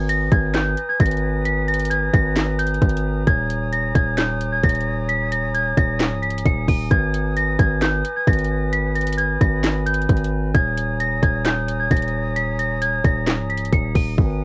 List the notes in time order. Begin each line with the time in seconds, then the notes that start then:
Already playing: G#1 B4 G#5 A#5 D#6
0.09 A#6, closed hi-hat
0.32 G#1 G#6, kick, closed hi-hat
0.55 G6, snare, clap, closed hi-hat
0.77 closed hi-hat
0.89 G#6
1.00 G#1 A#6, kick, closed hi-hat
1.06 closed hi-hat
1.11 closed hi-hat
1.17 closed hi-hat
1.45 B6, closed hi-hat
1.68 A#6, closed hi-hat
1.74 closed hi-hat
1.80 closed hi-hat
1.85 closed hi-hat
1.90 G#6, closed hi-hat
2.13 G#1 A#6, kick, closed hi-hat
2.36 snare, clap, closed hi-hat
2.59 G6, closed hi-hat
2.67 closed hi-hat
2.74 closed hi-hat
2.82 G#1, kick, closed hi-hat
2.89 closed hi-hat
2.97 closed hi-hat
3.27 D#1 C#5 G#5 G#6, kick, closed hi-hat
3.50 closed hi-hat
3.73 A#6, closed hi-hat
3.95 D#1 G#6, kick, closed hi-hat
4.18 G6, snare, clap, closed hi-hat
4.41 closed hi-hat
4.53 G#6
4.64 D#1 A#6, kick, closed hi-hat
4.69 closed hi-hat
4.75 closed hi-hat
4.81 closed hi-hat
5.09 B6, closed hi-hat
5.32 A#6, closed hi-hat
5.54 G#6, closed hi-hat
5.77 D#1 A#6, kick, closed hi-hat
6.00 snare, clap, closed hi-hat
6.11 C#1
6.22 B6, closed hi-hat
6.30 closed hi-hat
6.38 closed hi-hat
6.45 D#1 C#7, kick, closed hi-hat
6.68 D#1 D#7, kick, open hi-hat
6.91 G#1 B4 G#6, kick, closed hi-hat
7.14 closed hi-hat
7.36 A#6, closed hi-hat
7.59 G#1 G#6, kick, closed hi-hat
7.82 G6, snare, clap, closed hi-hat
8.05 closed hi-hat
8.16 G#6
8.27 G#1 A#6, kick, closed hi-hat
8.33 closed hi-hat
8.39 closed hi-hat
8.44 closed hi-hat
8.73 B5 B6, closed hi-hat
8.95 A#6, closed hi-hat
9.01 closed hi-hat
9.07 closed hi-hat
9.12 closed hi-hat
9.18 G#6, closed hi-hat
9.41 G#1 A#6, kick, closed hi-hat
9.63 snare, clap, closed hi-hat
9.86 G6, closed hi-hat
9.94 closed hi-hat
10.01 closed hi-hat
10.09 G#1, kick, closed hi-hat
10.17 closed hi-hat
10.24 closed hi-hat
10.54 D#1 C#5 A#5 D#6 G#6, kick, closed hi-hat
10.77 closed hi-hat
11.00 A#6, closed hi-hat
11.23 D#1 G#6, kick, closed hi-hat
11.45 G6, snare, clap, closed hi-hat
11.68 closed hi-hat
11.80 G#6
11.91 D#1 A#6, kick, closed hi-hat
11.97 closed hi-hat
12.02 closed hi-hat
12.08 closed hi-hat
12.36 B6, closed hi-hat
12.59 A#6, closed hi-hat
12.82 G#6, closed hi-hat
13.04 D#1 A#6, kick, closed hi-hat
13.27 snare, clap, closed hi-hat
13.39 C#1
13.50 B6, closed hi-hat
13.58 closed hi-hat
13.65 closed hi-hat
13.73 D#1 C#7, kick, closed hi-hat
13.95 D#1 D#7, kick, open hi-hat
14.18 G#1 B4 G#5 A#5 D#6, kick